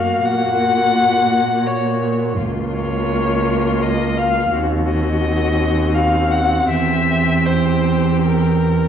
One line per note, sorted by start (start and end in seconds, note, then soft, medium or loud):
0.00 0.22 F#2 soft
0.00 2.35 A#3 medium
0.00 2.35 F#4 soft
0.00 0.27 F5 medium
0.25 2.40 A#2 medium
0.25 1.68 F#5 loud
1.67 2.38 C#5 medium
2.38 4.53 C#2 medium
2.38 4.49 A#3 medium
2.38 4.49 F4 medium
2.73 3.84 C#5 medium
3.82 4.19 D#5 medium
4.17 4.53 F5 medium
4.53 6.65 D#2 medium
4.53 8.88 C4 medium
4.53 6.65 F#4 medium
4.88 5.96 D#5 medium
5.95 6.33 F5 medium
6.31 6.69 F#5 medium
6.69 8.88 E2 medium
6.69 8.88 G4 medium
6.69 7.48 E5 loud
7.46 8.26 C5 medium
8.27 8.88 A#4 medium